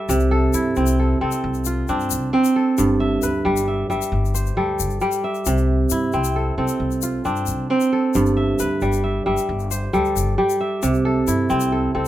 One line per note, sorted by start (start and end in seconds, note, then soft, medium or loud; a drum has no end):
0.00 0.14 G3 medium
0.00 0.31 A4 medium
0.00 0.17 C5 medium
0.00 0.91 E5 medium
0.09 0.47 C2 loud
0.09 2.43 C3 medium
0.09 shaker medium
0.20 shaker soft
0.31 0.99 A4 medium
0.53 0.73 G2 medium
0.53 1.72 E4 medium
0.53 shaker medium
0.76 1.14 C2 loud
0.76 1.21 C4 medium
0.76 shaker soft
0.86 shaker medium
0.99 1.21 A4 medium
1.21 1.31 C2 medium
1.21 1.89 C4 medium
1.21 2.53 A4 medium
1.31 shaker soft
1.44 1.82 C2 loud
1.54 shaker soft
1.65 3.06 F4 medium
1.65 shaker medium
1.88 2.13 G2 medium
1.88 2.33 C4 medium
1.88 3.57 D4 medium
1.88 shaker soft
2.00 shaker soft
2.10 2.30 C2 medium
2.10 shaker medium
2.33 3.29 C4 medium
2.44 shaker soft
2.56 3.88 A4 medium
2.78 3.16 G1 loud
2.78 5.12 G2 medium
2.78 shaker medium
3.00 3.67 E5 medium
3.22 3.42 D2 medium
3.22 4.40 B4 medium
3.22 shaker medium
3.45 3.83 G1 loud
3.45 3.89 G3 medium
3.57 shaker medium
3.68 3.90 E5 medium
3.90 3.99 G1 medium
3.90 4.56 G3 medium
3.90 4.93 E5 medium
3.90 shaker soft
4.02 shaker medium
4.12 4.50 G1 medium
4.25 shaker soft
4.34 5.53 C5 medium
4.34 shaker medium
4.46 shaker soft
4.57 4.81 D2 medium
4.57 5.00 G3 medium
4.57 5.89 A4 medium
4.80 4.98 G1 medium
4.80 shaker medium
4.90 shaker soft
5.01 5.51 G3 medium
5.01 6.43 G4 medium
5.01 shaker soft
5.12 shaker medium
5.24 6.27 E5 medium
5.35 shaker soft
5.46 5.84 C2 loud
5.46 7.81 C3 medium
5.46 shaker medium
5.57 shaker soft
5.90 6.10 G2 medium
5.90 7.09 E4 medium
5.90 shaker medium
6.13 6.52 C2 medium
6.13 6.58 C4 medium
6.13 shaker soft
6.24 shaker medium
6.36 6.58 A4 medium
6.58 6.67 C2 medium
6.58 7.25 C4 medium
6.58 7.90 A4 medium
6.68 shaker medium
6.80 7.18 C2 medium
6.91 shaker soft
7.02 8.43 F4 medium
7.02 shaker medium
7.25 7.49 G2 medium
7.25 7.70 C4 medium
7.25 8.93 D4 medium
7.25 shaker soft
7.36 shaker soft
7.46 7.66 C2 medium
7.46 shaker medium
7.70 8.66 C4 medium
7.80 shaker soft
7.93 9.24 A4 medium
8.14 8.53 G1 loud
8.14 10.49 G2 medium
8.14 shaker medium
8.26 shaker soft
8.37 9.03 E5 medium
8.59 8.79 D2 medium
8.59 9.77 B4 medium
8.59 shaker medium
8.81 9.20 G1 loud
8.81 9.25 G3 medium
8.81 shaker soft
8.93 shaker medium
9.04 9.26 E5 medium
9.26 9.36 G1 medium
9.26 9.92 G3 medium
9.26 10.29 E5 medium
9.37 shaker medium
9.49 9.87 G1 medium
9.60 shaker soft
9.71 10.90 C5 medium
9.71 shaker medium
9.93 10.17 D2 medium
9.93 10.37 G3 medium
9.93 11.05 A4 medium
9.93 shaker soft
10.05 shaker soft
10.16 10.35 G1 medium
10.16 shaker medium
10.38 10.88 G3 medium
10.38 11.79 G4 medium
10.50 shaker medium
10.61 11.64 E5 medium
10.83 11.21 C2 loud
10.83 12.08 C3 medium
10.83 shaker medium
10.94 shaker soft
11.05 11.72 A4 medium
11.27 11.47 G2 medium
11.27 12.08 E4 medium
11.27 shaker medium
11.50 11.88 C2 loud
11.50 11.94 C4 medium
11.50 shaker soft
11.60 shaker medium
11.72 11.95 A4 medium
11.95 12.04 C2 medium
11.95 12.08 C4 medium
11.95 12.08 A4 medium